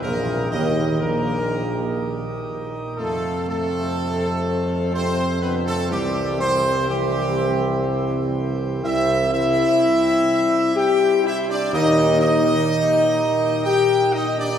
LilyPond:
<<
  \new Staff \with { instrumentName = "Trumpet section" } { \time 3/4 \key c \lydian \tempo 4 = 62 bes'8 ees''8 bes'4. r8 | a'8 a'4. c''8 b'16 a'16 | g'8 c''8 g'4. r8 | e''8 e''4. g''8 e''16 d''16 |
ees''8 ees''4. g''8 ees''16 d''16 | }
  \new Staff \with { instrumentName = "French horn section" } { \time 3/4 \key c \lydian bes8 ees'8 bes4. r8 | a8 a4. c'8 b16 a16 | g8 c'8 g4. r8 | e'8 e'4. g'8 e'16 d'16 |
ees'8 ees'4. g'8 ees'16 d'16 | }
  \new Staff \with { instrumentName = "Pipe organ" } { \time 3/4 \key c \lydian g'2. | f'2. | g'2.~ | g'2. |
g'2. | }
  \new Staff \with { instrumentName = "Pipe organ" } { \clef bass \time 3/4 \key c \lydian << { <bes, ees'>2. | <c c'>2.~ | <c c'>2. | <c c'>2. |
<bes, ees'>2. | } \\ { ees2. | f2. | e2. | g2. |
bes2. | } >> }
  \new Staff \with { instrumentName = "Trombone section" } { \clef bass \time 3/4 \key c \lydian << { bes,8 ees8 bes,4. r8 | c'2 c'4 | c'4 c'2 | c'8 r2 r8 |
bes8 r2 r8 | } \\ { r2. | c2 c8 d8 | e4 e2 | g8 r2 r8 |
g8 r2 r8 | } >> }
  \new Staff \with { instrumentName = "Tuba" } { \clef bass \time 3/4 \key c \lydian bes,,8 ees,8 bes,,4. r8 | f,2. | c,2. | c,4 r2 |
ees,4 r2 | }
>>